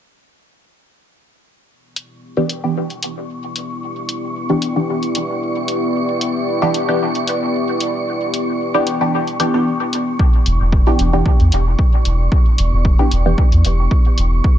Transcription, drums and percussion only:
1.96 closed hi-hat
2.49 closed hi-hat
2.90 closed hi-hat
3.03 closed hi-hat
3.56 closed hi-hat
4.09 closed hi-hat
4.62 closed hi-hat
5.03 closed hi-hat
5.15 closed hi-hat
5.68 closed hi-hat
6.21 closed hi-hat
6.74 closed hi-hat
7.15 closed hi-hat
7.27 closed hi-hat
7.80 closed hi-hat
8.34 closed hi-hat
8.87 closed hi-hat
9.27 closed hi-hat
9.40 closed hi-hat
9.93 closed hi-hat
10.19 kick
10.46 closed hi-hat
10.72 kick
10.99 closed hi-hat
11.26 kick
11.40 closed hi-hat
11.52 closed hi-hat
11.79 kick
12.05 closed hi-hat
12.32 kick
12.58 closed hi-hat
12.85 kick
13.11 closed hi-hat
13.38 kick
13.52 closed hi-hat
13.65 closed hi-hat
13.91 kick
14.18 closed hi-hat
14.44 kick

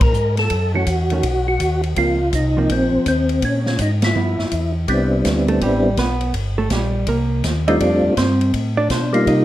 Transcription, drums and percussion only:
0.01 kick, ride
0.14 hi-hat pedal
0.37 snare, ride
0.50 kick, ride
0.86 kick, hi-hat pedal, ride
1.10 ride
1.23 kick, ride
1.60 kick, hi-hat pedal, ride
1.83 ride
1.96 kick, ride
2.33 kick, hi-hat pedal, ride
2.69 kick, ride
3.06 kick, hi-hat pedal, ride
3.29 ride
3.42 kick, ride
3.66 snare
3.79 kick, hi-hat pedal, ride
4.02 snare, ride
4.39 snare
4.51 kick, hi-hat pedal, ride
4.88 kick, ride
5.25 kick, snare, hi-hat pedal, ride
5.48 ride
5.61 kick, ride
5.97 kick, snare, hi-hat pedal, ride
6.21 ride
6.34 kick, ride
6.70 kick, snare, hi-hat pedal, ride
7.07 kick, ride
7.44 kick, snare, hi-hat pedal, ride
7.68 ride
7.80 kick, ride
8.17 kick, snare, hi-hat pedal, ride
8.41 ride
8.54 kick, ride
8.90 kick, snare, hi-hat pedal, ride
9.14 ride
9.27 kick, ride

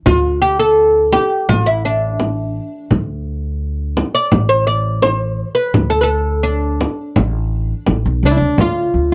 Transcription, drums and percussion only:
0.06 frame drum
1.12 frame drum
1.49 frame drum
2.20 frame drum
2.91 frame drum
3.97 frame drum
4.32 frame drum
5.02 frame drum
5.74 frame drum
6.81 frame drum
7.16 frame drum
7.86 frame drum
8.58 frame drum

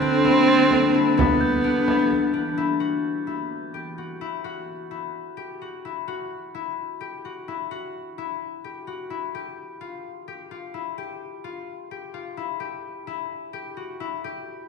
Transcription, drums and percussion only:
0.01 frame drum
0.25 frame drum
0.71 frame drum
0.95 frame drum
1.19 frame drum
1.88 frame drum
2.11 frame drum

